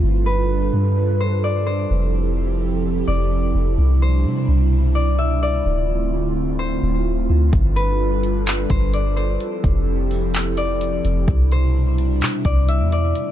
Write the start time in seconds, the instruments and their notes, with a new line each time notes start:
Already playing: analog synth pad F4, harp C5
0.03 808-style bass G1, analog synth pad G3 D4 A4 B4
0.26 harp B4
0.73 808-style bass G2
1.20 harp C5
1.44 harp D5
1.66 harp C5
1.90 808-style bass F1, analog synth pad F3 C4 E4 G4
3.07 808-style bass F1, harp D5
3.54 808-style bass F1
3.78 808-style bass C2, analog synth pad B2 C3 G3 D4
4.02 harp C5
4.25 808-style bass C3
4.48 808-style bass C2
4.95 harp D5
5.19 harp E5
5.43 harp D5
5.65 808-style bass D1, analog synth pad D3 A3 C4 F4
6.59 harp C5
6.83 808-style bass D1
7.30 808-style bass D2
7.53 808-style bass G1, analog synth pad G3 D4 A4 B4, kick, closed hi-hat
7.76 harp B4, closed hi-hat
8.23 closed hi-hat
8.46 clap, closed hi-hat
8.70 808-style bass G1, harp C5, kick, closed hi-hat
8.94 harp D5, closed hi-hat
9.16 harp C5, closed hi-hat
9.40 analog synth pad F3 C4 E4 G4, closed hi-hat
9.64 808-style bass F1, kick, closed hi-hat
10.11 open hi-hat
10.34 clap, closed hi-hat
10.57 harp D5, closed hi-hat
10.81 closed hi-hat
11.04 808-style bass F1, closed hi-hat
11.28 808-style bass C2, analog synth pad B2 C3 G3 D4, kick, closed hi-hat
11.52 harp C5, closed hi-hat
11.98 closed hi-hat
12.21 808-style bass C3, clap, closed hi-hat
12.45 808-style bass C2, harp D5, kick, closed hi-hat
12.69 harp E5, closed hi-hat
12.80 808-style bass E2
12.92 harp D5, closed hi-hat
13.15 analog synth pad D3 A3 C4 F4, closed hi-hat